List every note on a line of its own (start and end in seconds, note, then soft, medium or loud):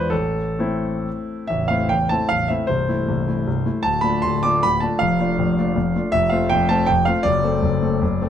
0.00 0.11 E2 medium
0.00 0.14 G#3 soft
0.00 0.14 D4 soft
0.00 0.14 F4 soft
0.00 0.11 B4 medium
0.10 0.58 A1 medium
0.10 1.05 A4 medium
0.59 1.45 A3 medium
0.59 1.46 C4 medium
0.59 1.46 E4 medium
1.47 1.69 A0 medium
1.47 1.69 A1 medium
1.47 1.69 E5 medium
1.68 1.89 A3 soft
1.68 1.89 C4 soft
1.68 1.89 E4 soft
1.68 1.90 F5 medium
1.89 2.11 A0 medium
1.89 2.11 A1 medium
1.89 2.10 G5 medium
2.09 2.29 A3 soft
2.09 2.29 C4 soft
2.09 2.29 E4 soft
2.09 2.30 A5 medium
2.29 2.49 A0 medium
2.29 2.49 A1 soft
2.29 2.49 F5 loud
2.48 2.67 A3 soft
2.48 2.67 C4 soft
2.48 2.67 E4 soft
2.48 2.68 E5 medium
2.67 2.87 C1 soft
2.67 2.87 C2 medium
2.67 3.84 C5 medium
2.88 3.06 A3 soft
2.88 3.06 E4 soft
3.08 3.27 C1 medium
3.08 3.27 C2 medium
3.28 3.45 A3 soft
3.28 3.45 E4 soft
3.47 3.65 C1 medium
3.47 3.65 C2 medium
3.66 3.82 A3 soft
3.66 3.83 E4 soft
3.83 4.03 D1 soft
3.83 4.03 D2 medium
3.83 4.03 A5 loud
4.01 4.22 A3 soft
4.01 4.22 D4 soft
4.01 4.22 F4 soft
4.01 4.23 B5 medium
4.22 4.44 D1 medium
4.22 4.44 D2 medium
4.22 4.44 C6 loud
4.43 4.63 A3 soft
4.43 4.63 D4 soft
4.43 4.63 F4 soft
4.43 4.63 D6 loud
4.63 4.83 D1 medium
4.63 4.83 D2 medium
4.63 4.82 B5 loud
4.80 4.99 A3 soft
4.80 4.99 D4 soft
4.80 5.00 F4 soft
4.80 5.00 A5 medium
4.99 5.19 F1 medium
4.99 5.19 F2 medium
4.99 6.12 F5 loud
5.20 5.37 A3 soft
5.20 5.37 D4 soft
5.20 5.37 F4 soft
5.39 5.57 F1 medium
5.39 5.57 F2 medium
5.58 5.75 A3 medium
5.58 5.75 D4 medium
5.58 5.75 F4 medium
5.76 5.94 F1 medium
5.76 5.94 F2 medium
5.96 6.12 A3 soft
5.96 6.12 D4 soft
5.96 6.12 F4 medium
6.12 6.31 F1 medium
6.12 6.31 F2 medium
6.12 6.31 E5 loud
6.30 6.49 A3 medium
6.30 6.49 C4 medium
6.30 6.49 F4 medium
6.30 6.50 F5 medium
6.49 6.70 F1 medium
6.49 6.70 F2 medium
6.49 6.69 G5 loud
6.69 6.87 A3 medium
6.69 6.87 C4 soft
6.69 6.87 F4 medium
6.69 6.88 A5 loud
6.86 7.06 F1 medium
6.86 7.06 F2 medium
6.86 7.05 G5 loud
7.05 7.23 A3 soft
7.05 7.23 C4 soft
7.05 7.24 F4 medium
7.05 7.24 F5 medium
7.23 7.42 F#1 medium
7.23 7.42 F#2 medium
7.23 8.29 D5 loud
7.43 7.61 A3 soft
7.43 7.61 C4 medium
7.43 7.61 A4 medium
7.63 7.82 F#1 medium
7.63 7.82 F#2 medium
7.82 8.00 A3 soft
7.82 8.00 C4 soft
7.82 8.01 A4 soft
8.02 8.21 F#1 medium
8.02 8.21 F#2 medium
8.21 8.29 A3 soft
8.21 8.29 C4 soft
8.21 8.29 A4 soft